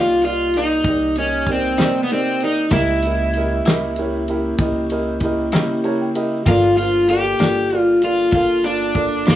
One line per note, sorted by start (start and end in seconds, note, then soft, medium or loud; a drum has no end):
0.00 0.81 C2 medium
0.00 0.11 C3 soft
0.00 0.11 G3 soft
0.00 0.10 A#3 medium
0.00 2.68 A#3 medium
0.00 0.10 D#4 medium
0.00 0.16 D#4 soft
0.00 2.68 D#4 medium
0.00 0.24 F4 medium
0.00 0.16 G4 soft
0.00 2.68 G4 medium
0.00 0.16 A#4 soft
0.00 0.16 D5 medium
0.22 0.47 D#4 medium
0.22 0.56 F4 medium
0.22 0.47 G4 soft
0.22 0.47 A#4 soft
0.22 0.46 D5 medium
0.22 ride medium
0.54 0.79 D#4 medium
0.54 1.18 D#4 medium
0.54 0.79 G4 soft
0.54 0.78 A#4 soft
0.54 0.79 D5 medium
0.54 ride medium
0.84 1.74 C2 medium
0.84 1.10 D#4 soft
0.84 1.10 G4 soft
0.84 1.10 A#4 soft
0.84 1.10 D5 medium
0.84 kick medium
0.84 ride medium
1.16 1.49 C#4 medium
1.16 1.40 D#4 soft
1.16 1.41 G4 soft
1.16 1.41 A#4 soft
1.16 1.41 D#5 medium
1.16 ride medium
1.47 1.71 D#4 medium
1.47 1.71 G4 soft
1.47 1.71 A#4 soft
1.47 1.72 D5 medium
1.47 kick medium
1.47 ride medium
1.52 2.03 C4 medium
1.77 2.67 C3 medium
1.77 1.98 C3 medium
1.77 1.97 G3 medium
1.77 1.97 A#3 medium
1.77 1.97 D#4 medium
1.77 snare medium
1.77 ride medium
1.82 2.04 D#4 medium
1.82 2.03 G4 soft
1.82 2.04 A#4 soft
1.82 2.04 D5 medium
2.03 2.10 B3 medium
2.09 2.43 C4 medium
2.09 2.34 D#4 medium
2.09 2.34 G4 medium
2.09 2.34 A#4 medium
2.09 2.34 D5 medium
2.09 ride medium
2.40 2.65 D#4 soft
2.40 2.65 G4 soft
2.40 2.65 A#4 soft
2.40 2.65 D5 medium
2.40 ride medium
2.44 2.72 D#4 medium
2.70 3.61 C#2 loud
2.70 2.90 C#3 medium
2.70 2.91 G3 medium
2.70 2.91 A#3 medium
2.70 6.42 A#3 medium
2.70 6.42 C#4 medium
2.70 4.55 E4 medium
2.70 6.43 E4 medium
2.70 2.96 E4 medium
2.70 2.91 E4 medium
2.70 6.42 G4 medium
2.70 2.96 G4 medium
2.70 2.96 A#4 medium
2.70 kick loud
2.70 ride medium
2.74 2.96 D#5 medium
3.03 3.28 E4 soft
3.03 3.28 G4 soft
3.03 ride medium
3.07 3.28 A#4 soft
3.07 3.28 D#5 medium
3.33 3.59 E4 medium
3.33 3.59 G4 soft
3.33 3.59 A#4 medium
3.33 ride medium
3.38 3.59 D#5 medium
3.65 4.56 C#2 medium
3.65 3.85 C#3 soft
3.65 3.85 G3 medium
3.65 3.85 A#3 medium
3.65 3.84 E4 medium
3.65 3.90 E4 medium
3.65 3.90 G4 medium
3.65 3.90 A#4 medium
3.65 3.90 D#5 medium
3.65 snare loud
3.65 ride medium
3.96 4.21 E4 medium
3.96 4.21 G4 medium
3.96 4.21 A#4 medium
3.96 4.21 C#5 medium
3.96 ride medium
4.28 4.52 E4 medium
4.28 4.52 G4 medium
4.28 4.52 A#4 medium
4.28 4.52 E5 medium
4.28 ride medium
4.58 5.48 C#2 medium
4.58 4.83 E4 medium
4.58 4.83 G4 medium
4.58 4.83 A#4 medium
4.58 4.83 D#5 medium
4.58 kick loud
4.58 ride medium
4.90 5.14 E4 medium
4.90 5.14 G4 medium
4.90 5.14 A#4 medium
4.90 5.14 D#5 medium
4.90 ride medium
5.20 5.45 E4 medium
5.20 5.46 G4 medium
5.20 5.46 A#4 medium
5.20 kick medium
5.20 ride medium
5.25 5.46 D#5 medium
5.52 6.42 C#3 medium
5.52 5.72 C#3 medium
5.52 5.72 G3 medium
5.52 5.72 A#3 medium
5.52 5.71 E4 medium
5.52 5.77 E4 medium
5.52 5.77 G4 medium
5.52 5.77 A#4 medium
5.52 5.77 D#5 medium
5.52 snare loud
5.52 ride medium
5.83 6.07 E4 medium
5.83 6.07 G4 medium
5.83 6.07 A#4 medium
5.83 6.08 C#5 medium
5.83 5.99 A#5 medium
5.83 ride medium
6.01 6.15 G5 medium
6.15 6.39 E4 medium
6.15 6.39 G4 medium
6.15 6.38 A#4 medium
6.15 6.39 D#5 medium
6.15 6.45 E5 medium
6.15 ride medium
6.46 7.36 G1 loud
6.46 6.65 G2 medium
6.46 6.65 F3 medium
6.46 6.66 A#3 medium
6.46 9.36 A#3 medium
6.46 9.36 D4 medium
6.46 6.66 D4 medium
6.46 6.76 F4 medium
6.46 6.70 F4 medium
6.46 9.36 F4 medium
6.46 6.70 A4 medium
6.46 9.36 A4 medium
6.46 6.70 A#4 medium
6.46 6.71 D5 medium
6.46 kick loud
6.46 ride medium
6.77 7.09 F4 medium
6.77 7.02 F4 soft
6.77 7.02 A4 soft
6.77 7.02 A#4 soft
6.77 7.02 C5 soft
6.77 ride medium
7.09 7.32 F4 medium
7.09 7.78 G4 medium
7.09 7.32 A4 medium
7.09 7.33 A#4 medium
7.09 7.33 D5 medium
7.09 ride medium
7.39 8.30 G1 medium
7.39 7.59 G2 soft
7.39 7.59 F3 medium
7.39 7.59 A#3 medium
7.39 7.59 D4 medium
7.39 7.64 F4 soft
7.39 7.64 A4 soft
7.39 7.63 A#4 soft
7.39 7.63 D5 medium
7.39 snare medium
7.39 ride medium
7.70 7.95 F4 soft
7.70 7.95 A4 soft
7.70 7.95 A#4 soft
7.70 7.95 D5 medium
7.70 ride medium
7.78 8.04 F4 medium
8.02 8.26 F4 medium
8.02 8.32 F4 medium
8.02 8.26 A4 soft
8.02 8.26 A#4 soft
8.02 8.26 D5 medium
8.02 ride medium
8.31 9.23 G1 medium
8.31 8.63 F4 medium
8.31 8.58 A4 soft
8.31 8.58 A#4 soft
8.31 8.58 F5 medium
8.31 kick loud
8.31 ride medium
8.35 8.58 F4 medium
8.64 9.29 D4 medium
8.64 8.88 F4 medium
8.64 8.89 A4 soft
8.64 8.89 A#4 soft
8.64 8.89 D5 medium
8.64 ride medium
8.95 9.20 F4 medium
8.95 9.19 A4 medium
8.95 9.19 A#4 medium
8.95 9.20 D5 medium
8.95 kick medium
8.95 ride medium
9.25 9.36 G2 medium
9.25 9.36 F3 medium
9.25 9.36 A#3 medium
9.25 9.36 D4 medium
9.25 9.36 F4 medium
9.25 9.36 A4 soft
9.25 9.36 D5 medium
9.25 snare loud
9.25 ride medium
9.29 9.36 G2 medium
9.29 9.36 C4 medium
9.29 9.36 A#4 soft